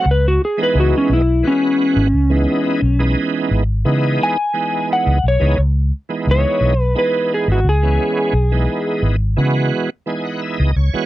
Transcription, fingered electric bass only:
\new Staff \with { instrumentName = "Fingered electric bass" } { \clef bass \time 4/4 \key cis \minor \tempo 4 = 87 cis,8 r8 cis,16 r16 b,,8 r8. gis,,16 cis,8 r8 | b,,8 r8 gis,,8 cis8 r4 r16 cis,16 b,,16 cis,16 | cis,8 r8 cis,16 r16 b,,8 r8. gis,,16 cis,8 r8 | b,,8 r8 gis,,8 cis8 r4 r16 cis,16 cis,16 r16 | }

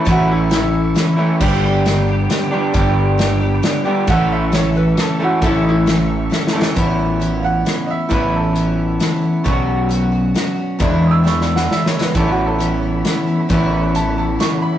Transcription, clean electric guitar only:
\new Staff \with { instrumentName = "Clean electric guitar" } { \time 3/4 \key a \mixolydian \tempo 4 = 134 <a, e a cis' e'>2~ <a, e a cis' e'>8 <a, e a cis' e'>8 | <g, d g b d' g'>2~ <g, d g b d' g'>8 <g, d g b d' g'>8 | <g, d g b d' g'>2~ <g, d g b d' g'>8 <g, d g b d' g'>8 | <a, e a cis' a'>2~ <a, e a cis' a'>8 <a, e a cis' a'>8 |
<a, e a cis' a'>2~ <a, e a cis' a'>8 <a, e a cis' a'>8 | \key a \major <a, e b cis' e'>2. | <a, e b cis' e'>2. | <b, fis b cis' fis'>2. |
<e, b, e gis d' e'>2. | <a, e b cis' e'>2. | <a, e b cis' e'>2. | }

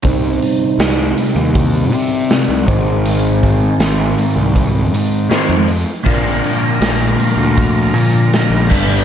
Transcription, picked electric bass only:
\new Staff \with { instrumentName = "Picked electric bass" } { \clef bass \time 4/4 \key c \minor \tempo 4 = 80 c,8 r8 c,8 r16 ees,8. c8 r16 c,16 aes,,8~ | aes,,4 aes,,8 r16 c,8. aes,8 r16 f,8 r16 | bes,,8 r8 bes,,8 r16 d,8. bes,8 r16 bes,,16 g,,8 | }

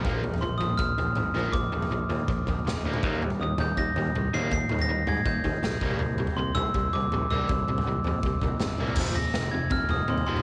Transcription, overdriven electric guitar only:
\new Staff \with { instrumentName = "Overdriven electric guitar" } { \clef bass \time 4/4 \key c \minor \tempo 4 = 161 <bes, f bes>8 <bes, f>8 <bes, f>8 <bes, f>8 <bes, f>8 <bes, f>8 <bes, f>8 <bes, f bes>8 | <bes, f>8 <bes, f>8 <bes, f>8 <bes, f>8 <bes, f>8 <bes, f>8 <bes, f>8 <bes, f bes>8 | <ees g bes>8 <ees g>8 <ees g>8 <ees g>8 <ees g>8 <ees g>8 <ees g>8 <ees g bes>8 | <ees g>8 <ees g>8 <ees g>8 <ees g>8 <ees g>8 <ees g>8 <ees g>8 <c g bes>8 |
<c g>8 <c g>8 <c g>8 <c g>8 <c g>8 <c g>8 <c g>8 <c g bes>8 | <c g>8 <c g>8 <c g>8 <c g>8 <c g>8 <c g>8 <c g>8 <c g bes>8 | <f, c f>8 <f, c>8 <f, c>8 <f, c>8 <f, c>8 <f, c>8 <f, c>8 <f, c f>8 | }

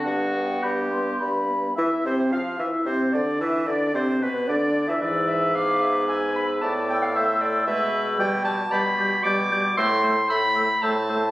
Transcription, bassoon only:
\new Staff \with { instrumentName = "Bassoon" } { \clef bass \time 3/4 \key g \major \tempo 4 = 113 g,4 g,4 g,4 | \key d \dorian e8 c8 f8 e8 c8 d8 | e8 d8 c8 b,8 d8. e16 | gis,2. |
a,2 b,4 | \key g \mixolydian b,4 b,4 b,4 | a,4 a,4 a,4 | }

